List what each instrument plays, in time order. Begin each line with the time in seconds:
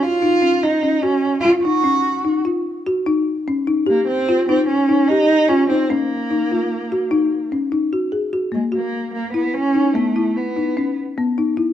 0.02 cello F4
0.23 marimba D#4
0.42 marimba C#4
0.63 cello D#4
0.83 marimba C#4
1.02 cello C#4, marimba F#4
1.40 cello F4
1.45 marimba F4
1.63 marimba D#4, cello F#4
1.84 marimba C#4
2.25 marimba D#4
2.45 marimba F4
2.87 marimba F#4
3.06 marimba D#4
3.48 marimba C#4
3.67 marimba D#4
3.87 cello A#3, marimba G4
4.07 cello C4
4.29 marimba F4
4.48 cello C4, marimba D#4
4.67 cello C#4
4.89 marimba D#4
5.08 cello D#4, marimba G4
5.48 cello C#4, marimba F4
5.69 cello C4, marimba D#4
5.89 cello A#3, marimba C#4
6.30 marimba D#4
6.52 marimba F4
6.92 marimba F#4
7.11 marimba D#4
7.52 marimba C#4
7.72 marimba D#4
7.93 marimba F#4
8.12 marimba G#4
8.33 marimba F#4
8.52 cello G#3, marimba A#3
8.72 cello A#3, marimba F#4
9.14 cello A#3
9.33 cello B3, marimba E4
9.54 cello C#4
9.74 marimba D#4
9.93 cello A3, marimba B3
10.16 marimba E4
10.36 cello B3
10.57 marimba D#4
10.77 marimba C#4
11.18 marimba B3
11.38 marimba D#4
11.57 marimba E4